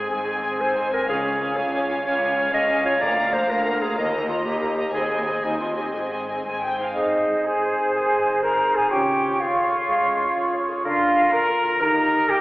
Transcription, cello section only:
0.12 0.55 G#2 soft
0.60 1.03 G#2 soft
1.09 1.51 C#2 medium
1.58 2.00 C#2 medium
2.05 2.48 C#2 medium
2.53 2.96 C#2 medium
3.01 3.44 D2 medium
3.49 3.92 D2 medium
3.97 4.40 D#2 medium
4.45 4.88 D#2 medium
4.93 5.37 D#2 medium
5.43 5.88 D#2 soft
5.93 6.39 G#2 soft
6.45 6.90 G#2 soft

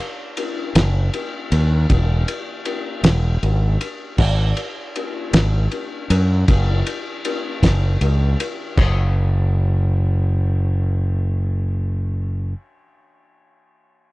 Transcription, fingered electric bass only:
0.75 1.09 F#1 medium
1.52 1.85 D#2 medium
1.90 2.23 E1 loud
3.03 3.37 E1 medium
3.43 3.76 G#1 medium
4.18 4.52 G#1 loud
5.33 5.67 G#1 medium
6.10 6.43 F#2 medium
6.48 6.81 F#1 loud
7.62 7.96 F#1 medium
8.01 8.34 C#2 medium
8.78 12.53 F#1 loud

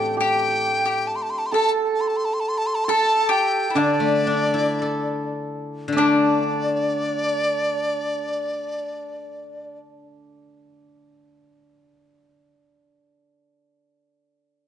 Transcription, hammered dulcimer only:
0.00 1.12 D4 medium
0.00 0.16 G4 medium
0.00 1.52 A4 medium
0.17 3.31 G4 medium
1.52 2.88 A4 medium
2.88 5.81 A4 loud
3.75 5.96 D4 medium
5.96 9.77 D4 loud

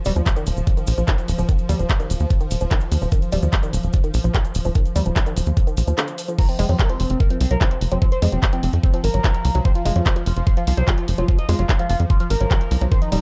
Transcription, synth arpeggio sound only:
0.06 0.13 G3 loud
0.16 0.23 F3 medium
0.37 0.46 D#3 medium
0.77 0.84 D#3 medium
0.98 1.05 F3 medium
1.08 1.18 D#3 medium
1.39 1.45 F3 medium
1.49 1.58 D#3 medium
1.69 1.76 G3 loud
1.79 1.86 F3 medium
2.00 2.09 D#3 medium
2.41 2.48 D#3 medium
2.61 2.68 F3 medium
2.71 2.81 D#3 medium
3.02 3.09 F3 medium
3.12 3.22 D#3 medium
3.32 3.39 G3 loud
3.43 3.50 F3 medium
3.63 3.73 D#3 medium
4.04 4.11 D#3 medium
4.24 4.31 F3 medium
4.34 4.44 D#3 medium
4.65 4.72 F3 medium
4.75 4.85 D#3 medium
4.96 5.03 G3 loud
5.06 5.13 F3 medium
5.26 5.36 D#3 medium
5.67 5.74 D#3 medium
5.88 5.95 F3 medium
5.98 6.05 D3 loud
6.28 6.35 F3 medium
6.39 6.48 F3 medium
6.59 6.66 G#3 loud
6.69 6.76 F#3 medium
6.90 6.99 F3 medium
7.30 7.37 F3 medium
7.51 7.58 F#3 medium
7.61 7.71 F3 medium
7.92 7.99 F#3 medium
8.02 8.11 F3 medium
8.22 8.29 G#3 loud
8.32 8.39 F#3 medium
8.53 8.62 F3 medium
8.94 9.01 F3 medium
9.14 9.21 F#3 medium
9.24 9.34 F3 medium
9.55 9.62 F#3 medium
9.65 9.75 F3 medium
9.85 9.92 G#3 loud
9.96 10.03 F#3 medium
10.16 10.26 F3 medium
10.57 10.64 F3 medium
10.77 10.84 F#3 medium
10.88 10.97 F3 medium
11.18 11.25 F#3 medium
11.28 11.38 F3 medium
11.49 11.56 G#3 loud
11.59 11.66 F#3 medium
11.79 11.89 F3 medium
12.20 12.27 F3 medium
12.41 12.48 F#3 medium
12.51 12.60 F3 medium
12.81 12.88 F#3 medium
12.92 13.01 D#3 medium
13.12 13.19 G3 loud

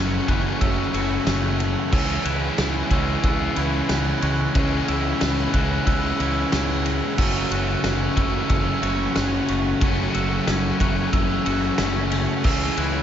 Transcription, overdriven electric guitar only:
0.00 0.26 F#2 medium
0.00 0.26 C#3 medium
0.00 0.27 F#3 medium
0.00 0.27 A3 loud
0.00 0.28 C#4 medium
0.28 1.91 F#2 medium
0.28 1.91 C#3 medium
0.28 1.91 F#3 medium
0.28 1.91 A3 medium
0.28 1.93 C#4 medium
1.92 2.93 C#3 medium
1.92 2.92 E3 loud
1.92 2.91 G#3 loud
1.92 2.90 C#4 loud
2.90 4.53 C#3 medium
2.90 4.55 E3 medium
2.90 4.53 G#3 loud
2.90 4.57 C#4 medium
4.55 5.52 C#3 loud
4.55 5.54 E3 loud
4.55 5.52 G#3 loud
4.55 5.53 C#4 loud
5.53 7.17 C#3 medium
5.53 7.18 E3 medium
5.53 7.16 G#3 medium
5.53 7.19 C#4 medium
7.17 8.17 F#2 loud
7.17 8.15 C#3 medium
7.17 8.16 F#3 loud
7.17 8.16 A3 loud
7.17 8.15 C#4 loud
8.16 9.79 F#2 medium
8.16 9.80 C#3 medium
8.16 9.79 F#3 medium
8.16 9.79 A3 medium
8.16 9.82 C#4 medium
9.81 10.78 F#2 medium
9.81 10.78 C#3 medium
9.81 10.78 F#3 loud
9.81 10.79 A3 loud
9.81 10.80 C#4 loud
10.80 12.44 F#2 medium
10.80 12.43 C#3 medium
10.80 12.43 F#3 medium
10.80 12.43 A3 medium
10.80 12.46 C#4 medium
12.44 13.03 C#3 medium
12.44 13.03 E3 loud
12.44 13.03 G#3 loud
12.44 13.03 C#4 loud

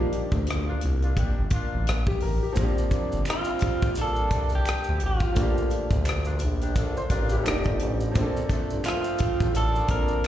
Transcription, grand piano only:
0.00 2.51 F3 medium
0.00 2.52 A#3 soft
0.00 2.53 D4 medium
0.00 2.55 D#4 soft
0.00 1.86 G4 medium
2.08 2.22 G4 medium
2.22 2.42 A#4 medium
2.43 2.61 G4 medium
2.53 5.30 F3 medium
2.53 5.31 A#3 medium
2.57 5.32 C4 medium
2.57 5.34 D4 medium
2.62 5.35 G4 medium
5.32 7.40 F3 medium
5.32 7.41 A3 soft
5.38 7.42 A#3 medium
5.38 7.43 D4 soft
5.42 6.76 G4 medium
6.77 6.96 A4 soft
6.97 7.11 C5 medium
7.12 7.31 A#4 medium
7.32 7.48 G4 medium
7.44 8.10 F3 medium
7.44 8.15 A3 medium
7.44 8.16 D4 medium
7.48 8.16 D#4 medium
7.48 8.17 G4 medium
8.11 9.84 F3 medium
8.11 9.85 A#3 medium
8.16 9.87 C4 medium
8.16 9.88 D4 medium
8.21 9.89 A4 medium
9.88 10.27 F3 soft
9.88 10.27 A#3 soft
9.88 10.27 C4 soft
9.88 10.27 D4 soft
9.93 9.99 A4 soft
9.99 10.27 A#4 soft

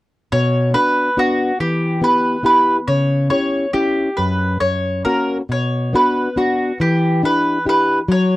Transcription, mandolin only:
0.32 0.72 C#5 medium
0.74 1.19 B4 medium
1.19 1.58 F#4 medium
1.60 2.00 G4 medium
2.04 2.43 B4 medium
2.46 2.76 B4 medium
2.88 3.27 C#5 loud
3.30 3.70 C#5 medium
3.73 4.18 G4 medium
4.17 4.57 B4 medium
4.60 5.04 C#5 medium
5.05 5.36 A#4 medium
5.52 5.95 C#5 medium
5.96 6.35 B4 medium
6.37 6.77 F#4 medium
6.81 7.21 G4 medium
7.25 7.64 B4 medium
7.69 7.98 B4 medium
8.12 8.37 C#5 medium

